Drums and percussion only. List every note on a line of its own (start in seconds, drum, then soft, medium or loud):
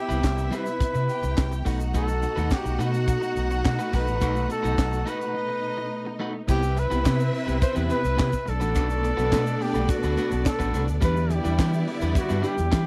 0.10 closed hi-hat soft
0.10 shaker medium
0.24 kick medium
0.24 snare medium
0.24 clap medium
0.24 shaker medium
0.38 shaker medium
0.52 closed hi-hat medium
0.52 shaker medium
0.66 closed hi-hat medium
0.66 shaker soft
0.80 kick loud
0.80 closed hi-hat medium
0.80 shaker medium
0.95 closed hi-hat soft
0.95 shaker medium
1.09 closed hi-hat medium
1.09 shaker soft
1.23 closed hi-hat soft
1.23 shaker medium
1.37 kick loud
1.37 snare loud
1.37 clap loud
1.37 shaker medium
1.52 closed hi-hat soft
1.52 shaker medium
1.66 kick medium
1.66 snare soft
1.66 open hi-hat medium
1.66 shaker medium
1.80 closed hi-hat soft
1.80 shaker medium
1.94 kick medium
1.94 closed hi-hat medium
1.94 shaker medium
2.08 shaker medium
2.23 closed hi-hat medium
2.23 shaker medium
2.37 closed hi-hat soft
2.37 shaker soft
2.51 kick loud
2.51 snare medium
2.51 clap medium
2.51 shaker medium
2.66 closed hi-hat soft
2.66 shaker medium
2.80 closed hi-hat medium
2.80 shaker medium
2.94 closed hi-hat medium
2.94 shaker medium
3.08 kick loud
3.08 closed hi-hat medium
3.08 shaker medium
3.22 closed hi-hat soft
3.22 shaker medium
3.36 closed hi-hat medium
3.36 shaker soft
3.51 closed hi-hat soft
3.51 shaker medium
3.65 kick loud
3.65 snare loud
3.65 clap loud
3.65 shaker medium
3.80 shaker medium
3.93 kick loud
3.93 snare soft
3.93 open hi-hat medium
3.93 shaker medium
4.07 closed hi-hat soft
4.07 shaker medium
4.21 kick loud
4.21 closed hi-hat medium
4.21 shaker medium
4.36 closed hi-hat soft
4.36 shaker medium
4.50 closed hi-hat medium
4.50 shaker medium
4.64 closed hi-hat soft
4.64 shaker medium
4.78 kick loud
4.78 snare loud
4.78 clap medium
4.78 shaker medium
4.93 closed hi-hat soft
4.93 shaker soft
5.07 closed hi-hat medium
5.07 shaker medium
5.21 closed hi-hat soft
5.21 shaker soft
6.48 kick medium
6.48 crash medium
6.48 shaker medium
6.63 closed hi-hat soft
6.63 shaker medium
6.77 closed hi-hat medium
6.77 shaker soft
6.91 closed hi-hat soft
6.91 shaker medium
7.05 kick loud
7.05 snare loud
7.05 clap medium
7.05 shaker medium
7.20 closed hi-hat soft
7.20 shaker medium
7.34 open hi-hat medium
7.48 closed hi-hat soft
7.48 shaker soft
7.62 kick loud
7.62 closed hi-hat loud
7.62 shaker medium
7.76 closed hi-hat soft
7.76 shaker medium
7.90 closed hi-hat medium
7.90 shaker soft
8.04 closed hi-hat soft
8.04 shaker medium
8.18 kick loud
8.18 snare loud
8.18 clap loud
8.18 shaker medium
8.33 kick medium
8.33 shaker medium
8.47 closed hi-hat medium
8.47 shaker medium
8.61 closed hi-hat medium
8.61 shaker medium
8.75 kick medium
8.75 closed hi-hat medium
8.75 shaker medium
8.90 closed hi-hat soft
8.90 shaker medium
9.04 closed hi-hat medium
9.04 shaker medium
9.18 closed hi-hat soft
9.18 shaker soft
9.32 kick loud
9.32 snare loud
9.32 clap medium
9.32 shaker medium
9.47 closed hi-hat soft
9.47 shaker medium
9.61 open hi-hat medium
9.75 closed hi-hat medium
9.75 shaker soft
9.89 kick loud
9.89 closed hi-hat loud
9.89 shaker medium
10.03 shaker medium
10.17 closed hi-hat medium
10.17 shaker soft
10.32 closed hi-hat soft
10.32 shaker medium
10.46 kick loud
10.46 snare loud
10.46 clap loud
10.46 shaker medium
10.60 kick loud
10.60 closed hi-hat soft
10.60 shaker medium
10.74 closed hi-hat medium
10.74 shaker medium
10.88 closed hi-hat medium
10.88 shaker medium
11.02 kick loud
11.02 closed hi-hat medium
11.02 shaker medium
11.16 shaker medium
11.31 closed hi-hat medium
11.31 shaker soft
11.45 closed hi-hat soft
11.45 shaker soft
11.59 kick loud
11.59 snare medium
11.59 clap medium
11.59 shaker medium
11.73 shaker soft
11.88 open hi-hat medium
12.01 closed hi-hat medium
12.01 shaker soft
12.15 kick loud
12.15 closed hi-hat medium
12.15 shaker medium
12.30 closed hi-hat soft
12.30 shaker medium
12.44 closed hi-hat medium
12.44 shaker soft
12.58 closed hi-hat soft
12.58 shaker medium
12.72 kick loud
12.72 snare loud
12.72 clap medium
12.72 shaker medium